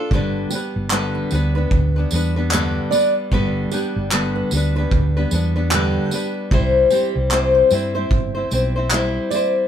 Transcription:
0.00 0.13 D4 soft
0.00 0.12 F4 soft
0.00 0.12 A4 medium
0.11 0.44 G1 medium
0.11 0.52 G2 medium
0.11 0.52 D3 medium
0.11 0.51 G3 medium
0.11 0.52 B3 medium
0.11 0.53 D4 medium
0.11 kick loud
0.15 0.53 B4 medium
0.50 0.91 G3 medium
0.50 0.92 B3 medium
0.50 0.92 D4 medium
0.50 0.74 G4 medium
0.50 tambourine medium
0.55 0.92 B4 medium
0.76 1.22 G1 medium
0.90 1.31 G2 medium
0.90 1.31 D3 medium
0.90 1.30 G3 medium
0.90 1.32 B3 medium
0.90 1.32 D4 medium
0.90 1.32 B4 loud
0.90 clap loud
1.15 1.30 B4 medium
1.31 1.65 D2 loud
1.31 1.55 G3 medium
1.31 1.56 B3 medium
1.31 1.55 D4 medium
1.31 tambourine medium
1.35 1.54 B4 medium
1.55 1.97 G3 soft
1.55 1.96 B3 medium
1.55 1.96 D4 medium
1.55 1.95 B4 medium
1.55 2.08 B4 medium
1.71 2.04 D2 medium
1.71 kick loud
1.96 2.10 G3 soft
1.96 2.12 B3 soft
1.96 2.13 D4 medium
1.96 2.12 B4 medium
2.11 2.77 E2 medium
2.11 2.35 G3 medium
2.11 2.36 B3 medium
2.11 2.36 D4 medium
2.11 tambourine medium
2.16 2.35 B4 medium
2.36 2.52 G3 soft
2.36 2.52 B3 medium
2.36 2.52 D4 medium
2.36 2.52 B4 medium
2.51 2.92 G2 medium
2.51 2.92 D3 medium
2.51 2.90 G3 medium
2.51 2.92 B3 medium
2.51 2.93 D4 medium
2.51 2.93 B4 loud
2.51 clap loud
2.91 3.31 G3 medium
2.91 3.32 B3 medium
2.91 3.32 D4 medium
2.91 3.33 B4 medium
2.91 3.14 D5 medium
2.91 tambourine medium
3.31 3.64 G1 loud
3.31 3.71 G2 medium
3.31 3.72 D3 medium
3.31 3.71 G3 medium
3.31 3.72 B3 medium
3.31 3.72 D4 medium
3.31 3.73 B4 loud
3.31 kick loud
3.71 4.11 G3 medium
3.71 4.12 B3 medium
3.71 4.12 D4 medium
3.71 3.94 G4 medium
3.71 4.13 B4 medium
3.71 tambourine medium
3.96 4.42 G1 medium
4.12 4.52 G2 medium
4.12 4.52 D3 medium
4.12 4.51 G3 medium
4.12 4.52 B3 medium
4.12 4.52 D4 medium
4.12 4.53 B4 medium
4.12 clap loud
4.36 4.51 B4 medium
4.51 4.85 D2 medium
4.51 4.76 G3 medium
4.51 4.77 B3 medium
4.51 tambourine medium
4.55 4.77 D4 medium
4.55 4.75 B4 medium
4.76 5.17 B3 soft
4.76 5.16 D4 medium
4.76 5.28 B4 medium
4.76 5.16 B4 medium
4.80 5.18 G3 soft
4.91 5.24 D2 medium
4.91 kick loud
5.17 5.31 G3 soft
5.17 5.32 B3 soft
5.17 5.32 D4 soft
5.17 5.32 B4 medium
5.31 5.97 E2 loud
5.31 5.56 G3 medium
5.31 5.56 B3 medium
5.31 5.55 D4 medium
5.31 5.55 B4 medium
5.31 tambourine medium
5.56 5.73 G3 soft
5.56 5.73 B3 medium
5.56 5.72 D4 medium
5.56 5.72 B4 medium
5.71 6.12 G2 medium
5.71 6.12 D3 medium
5.71 6.10 G3 medium
5.71 6.12 B3 medium
5.71 6.13 D4 medium
5.71 6.31 G4 medium
5.71 6.13 B4 loud
5.71 clap loud
6.11 6.51 G3 medium
6.11 6.52 B3 medium
6.11 6.53 D4 medium
6.11 6.53 B4 medium
6.11 tambourine medium
6.51 6.84 C2 medium
6.51 6.92 C3 medium
6.51 6.89 G3 medium
6.51 6.91 C4 medium
6.51 6.92 E4 medium
6.51 6.92 C5 medium
6.51 kick loud
6.90 7.31 G3 medium
6.90 7.32 C4 medium
6.90 7.32 E4 medium
6.90 7.14 G4 medium
6.90 7.33 C5 medium
6.90 tambourine medium
7.16 7.61 C2 medium
7.31 7.71 C3 medium
7.31 7.70 G3 medium
7.31 7.71 C4 medium
7.31 7.72 E4 medium
7.31 7.72 C5 loud
7.31 clap medium
7.54 7.70 C5 medium
7.71 8.04 G2 medium
7.71 7.95 G3 medium
7.71 7.96 C4 medium
7.71 7.95 E4 medium
7.71 7.93 C5 medium
7.71 tambourine medium
7.95 8.37 C4 medium
7.95 8.35 E4 medium
7.95 8.33 C5 medium
7.95 8.48 C5 medium
8.11 8.44 G1 medium
8.11 kick loud
8.35 8.52 C4 soft
8.35 8.52 E4 soft
8.35 8.51 C5 medium
8.51 9.17 B1 medium
8.51 8.75 G3 medium
8.51 8.76 C4 medium
8.51 8.76 E4 medium
8.51 8.75 C5 medium
8.51 tambourine medium
8.76 8.92 C4 medium
8.76 8.92 E4 soft
8.76 8.91 C5 medium
8.91 9.30 G3 medium
8.91 9.32 C4 medium
8.91 9.32 E4 loud
8.91 clap loud
8.95 9.33 C5 loud
9.30 9.68 G3 medium
9.30 9.68 C4 medium
9.30 9.68 E4 medium
9.30 9.54 D5 medium
9.30 tambourine medium
9.35 9.68 C5 medium

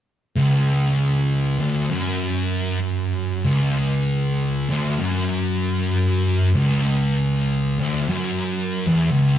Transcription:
0.36 1.59 C#2 loud
1.59 1.89 D2 loud
1.91 3.44 F#2 loud
3.45 4.69 C#2 loud
4.70 4.99 D2 loud
4.99 6.54 F#2 loud
6.56 7.79 C#2 loud
7.80 8.08 D2 loud
8.09 8.86 F#2 medium
8.87 9.10 E2 loud
9.11 9.38 C#2 medium

